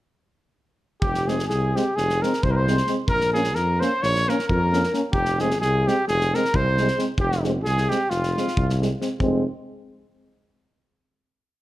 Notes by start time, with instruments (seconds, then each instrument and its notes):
1.01 tuba F1, trumpet G4, flugelhorn G4, kick
1.14 snare
1.27 euphonium G#3, french horn C4, flugelhorn G#4, trumpet G#4, snare
1.39 snare
1.48 tuba C2, trumpet G#4, flugelhorn G#4, snare
1.75 euphonium G#3, french horn C4, trumpet G4, flugelhorn G4, snare
1.95 tuba F1, flugelhorn G#4, trumpet G#4, snare
2.10 snare
2.22 euphonium G#3, french horn C4, flugelhorn A#4, trumpet A#4, snare
2.33 snare
2.43 tuba C2, trumpet C5, flugelhorn C5, kick
2.51 trumpet A#4, flugelhorn A#4
2.56 trumpet C5
2.60 flugelhorn C5
2.68 euphonium G#3, french horn C4, snare
2.77 snare
2.87 euphonium G#3, french horn C4, snare
3.08 tuba A#1, trumpet A#4, flugelhorn A#4, kick
3.21 snare
3.33 euphonium A#3, french horn C#4, trumpet G#4, flugelhorn G#4, snare
3.44 snare
3.55 tuba F2, trumpet A#4, flugelhorn A#4, snare
3.80 euphonium A#3, french horn C#4, trumpet C5, flugelhorn C5, snare
4.02 tuba A#1, trumpet C#5, snare
4.06 flugelhorn C#5
4.15 snare
4.28 euphonium A#3, french horn C#4, trumpet A#4, snare
4.33 flugelhorn A#4
4.39 snare
4.49 tuba F2, trumpet A#4, flugelhorn A#4, kick
4.73 euphonium A#3, french horn C#4, snare
4.83 snare
4.93 euphonium A#3, french horn C#4, snare
5.12 tuba F1, trumpet G4, flugelhorn G4, kick
5.25 snare
5.38 euphonium G#3, french horn C4, flugelhorn G#4, trumpet G#4, snare
5.51 snare
5.60 tuba C2, trumpet G#4, flugelhorn G#4, snare
5.86 euphonium G#3, french horn C4, flugelhorn G4, trumpet G4, snare
6.07 tuba F1, flugelhorn G#4, trumpet G#4, snare
6.21 snare
6.34 euphonium G#3, french horn C4, flugelhorn A#4, trumpet A#4, snare
6.45 snare
6.54 tuba C2, flugelhorn C5, trumpet C5, kick
6.78 euphonium G#3, french horn C4, snare
6.88 snare
6.97 euphonium G#3, french horn C4, snare
7.18 tuba F1, trumpet G4, flugelhorn G4, kick
7.32 snare
7.43 euphonium G#3, french horn C4, snare
7.63 tuba C2, trumpet G#4, flugelhorn G#4, snare
7.78 snare
7.89 euphonium G#3, french horn C4, trumpet G4, flugelhorn G4, snare
8.10 tuba F1, trumpet F4, flugelhorn F4, snare
8.23 snare
8.37 euphonium G#3, french horn C4, snare
8.48 snare
8.57 tuba C2, kick
8.70 snare
8.80 euphonium G#3, french horn C4, snare
9.00 euphonium G#3, french horn C4, snare
9.20 tuba F1, euphonium G#3, french horn C4, kick